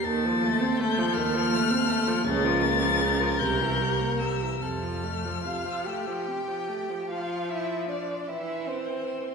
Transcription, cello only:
X:1
M:6/8
L:1/8
Q:3/8=51
K:F
V:1 name="Cello"
_E,,3 E,,3 | _D,,3 C,,3 | F,,2 F G3 | F E D E C2 |]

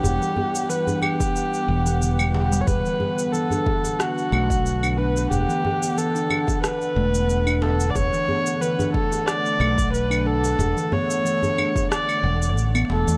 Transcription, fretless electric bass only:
X:1
M:4/4
L:1/16
Q:"Swing 16ths" 1/4=91
K:Bm
V:1 name="Fretless electric bass" clef=bass
E,,, z8 z E,,,6 | E,,, z8 z B,,,6 | E,,, z8 z E,,,6 | E,,, z8 z B,,,6 |
E,,, z8 z E,,,2 A,,,2 E,,, E,, |]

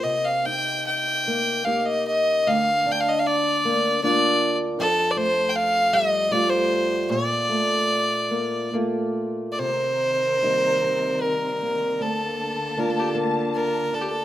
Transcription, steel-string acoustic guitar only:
X:1
M:3/4
L:1/8
Q:1/4=76
K:Cdor
V:1 name="Steel-string acoustic guitar"
C, E2 B, [B,EG]2 | D,, D2 B, [B,DF]2 | F,, A,2 G, [G,A,F]2 | B,, A,2 B, [A,B,F]2 |
C,2 [G,B,E] G,2 B, | D,,2 [B,DF] B,2 D |]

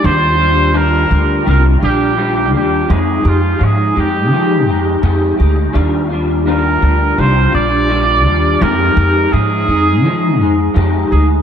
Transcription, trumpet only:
X:1
M:4/4
L:1/8
Q:"Swing 16ths" 1/4=84
K:Eb
V:1 name="Trumpet"
c2 B2 B G2 G | A F A G3 z2 | z2 B2 c d3 | B2 A4 z A |]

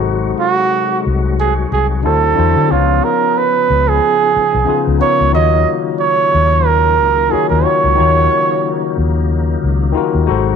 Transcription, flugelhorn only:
X:1
M:4/4
L:1/16
Q:"Swing 16ths" 1/4=91
K:Ebm
V:1 name="Flugelhorn"
z2 G4 z2 A2 A2 =A4 | F2 B2 c3 A6 z d2 | e2 z2 d4 B4 A B d2- | d6 z8 z2 |]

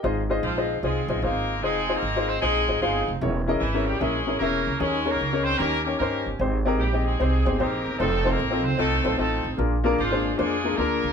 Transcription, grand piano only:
X:1
M:4/4
L:1/16
Q:"Swing" 1/4=151
K:Ab
V:1 name="Grand piano"
[EFAce] z [EFAce]2 z [EFAce]2 z [EFAce] z [EFAce] z [EFAcf]2 z2 | [EFAce] z [EFAce]2 z [EFAce]2 z [EFAce] z [EFAce] z [EFAcf]2 z2 | [D_FABd] z [DFABe]2 z [DFABd]2 z [DFAB_f] z [DFABd] z [DFABf]2 z2 | [DEABd] z [DEABd]2 z [DEABd]2 z [DEGBd] z [DEGBd] z [DEGBc]2 z2 |
[CEGAc] z [CEGAB]2 z [CEGAe]2 z [CEGAc] z [CEGAc] z [CEGAc]2 z2 | [CEF=Ac] z [CEFAc]2 z [CEFAe]2 z [CEFAe] z [CEFAc] z [CEFAe]2 z2 | [B,=DFAB] z [B,DFAB]2 z [B,DFAc]2 z [B,DFAc] z [B,DFAB] z [B,DFAB]2 z2 |]
V:2 name="Grand piano" clef=bass
A,,6 z8 z2 | z16 | _F,6 z8 z2 | E,6 z2 E,6 z2 |
A,,6 z8 z2 | z16 | B,,6 z8 z2 |]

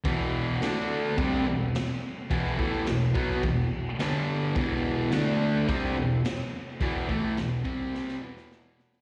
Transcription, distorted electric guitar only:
X:1
M:4/4
L:1/8
Q:1/4=107
K:Em
V:1 name="Distorted electric guitar" clef=bass
[E,,B,,E,]2 [D,A,D]2 [C,G,C] [E,,B,,] z2 | [E,,B,,E,] [A,,E,A,] [E,,B,,] [B,,F,B,] [E,,B,,] z [G,,D,G,]2 | [E,,B,,E,]2 [D,A,D]2 [C,G,C] [E,,B,,] z2 | [E,,B,,E,] [A,,E,A,] [E,,B,,] [C,G,C]2 [E,,B,,E,]3 |]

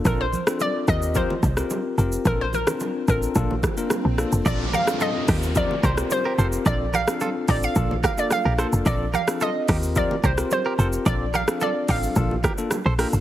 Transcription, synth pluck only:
X:1
M:4/4
L:1/16
Q:1/4=109
K:Bb
V:1 name="Synth pluck"
B c3 d2 e2 c6 z2 | B c B4 B8 z2 | d2 f2 e4 d2 c2 c3 z | d2 f4 d f3 f d f3 z |
d2 f2 e4 d2 c2 c3 z | d2 f2 d2 f6 z4 |]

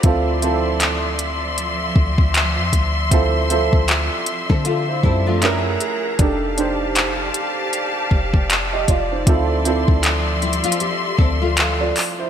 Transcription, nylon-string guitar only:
X:1
M:4/4
L:1/16
Q:"Swing 16ths" 1/4=78
K:Dm
V:1 name="Nylon-string guitar"
z16 | z6 z [CA] [A,F]2 [G,E] [F,D]2 z3 | z16 | z6 [G,E] [A,F] G2 [CA] [A,F]4- [A,F] |]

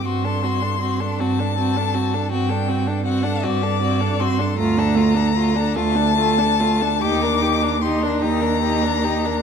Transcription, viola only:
X:1
M:12/8
L:1/16
Q:3/8=52
K:Dphr
V:1 name="Viola"
C D C D C D C D C D C D C D C D C D C D C D C D | A, D A, D A, D A, D A, D A, D E D E D E D E D E D E D |]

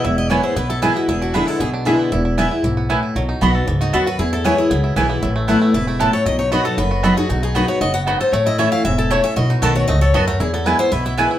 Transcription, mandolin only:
X:1
M:4/4
L:1/8
Q:1/4=232
K:E
V:1 name="Mandolin"
z2 [B,EBg] z3 [B,EBg] z | z2 [=DGeb] z3 [DGeb] z | z2 [B,EBg] z3 [B,EBg] z | z2 [B,Fdb] z3 [B,Fdb] z |
z2 [B,EBg] z3 [B,EBg] z | z2 [B,EBa] z3 [B,EBa] z | z2 [B,Fdb] z3 [B,Fdb] z | z2 [B,Fdb] z3 [B,Fdb] z |
z2 [A,Eca] z3 [A,Eca] z | z2 [B,Fda] z3 [B,Fda] z | z2 [B,EBg] z3 [B,EBg] z |]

